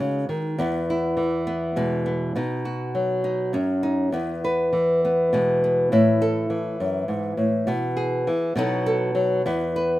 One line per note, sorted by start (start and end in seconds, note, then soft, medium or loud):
0.00 0.29 C#3 medium
0.00 0.56 G#3 medium
0.00 0.56 D#4 medium
0.00 0.61 F#4 medium
0.29 0.59 D#3 medium
0.58 2.35 E2 medium
0.58 1.46 B3 medium
0.90 2.36 E4 medium
1.17 2.35 E3 medium
1.47 2.05 B3 medium
1.76 2.34 B2 medium
1.76 2.36 G#3 medium
2.06 2.36 B3 medium
2.36 3.54 B2 medium
2.36 3.23 D#4 medium
2.65 4.11 F#4 soft
2.95 4.11 F#3 medium
3.24 3.82 D#4 medium
3.53 4.10 F#2 medium
3.53 4.10 C#4 medium
3.83 4.10 D#4 medium
4.12 5.91 E2 medium
4.12 5.03 B3 medium
4.44 5.88 B4 medium
4.73 6.49 E3 medium
5.05 5.63 B3 medium
5.33 5.91 B2 medium
5.33 5.92 G#3 medium
5.64 5.92 B3 medium
5.92 6.79 A2 medium
5.92 7.64 E4 medium
6.22 7.63 A4 medium
6.50 8.26 E3 medium
6.80 7.08 F#2 medium
7.08 7.37 G#2 medium
7.37 7.67 A2 medium
7.67 8.26 B2 medium
7.67 8.57 B3 medium
7.97 8.52 G#4 medium
8.27 8.56 E3 medium
8.56 9.45 B2 medium
8.56 9.14 F#3 medium
8.56 9.42 B3 medium
8.56 9.42 D#4 medium
8.56 8.85 A4 medium
8.86 9.42 A4 medium
9.15 9.41 F#3 medium
9.46 9.99 E2 medium
9.46 9.99 B3 medium
9.76 9.99 B4 medium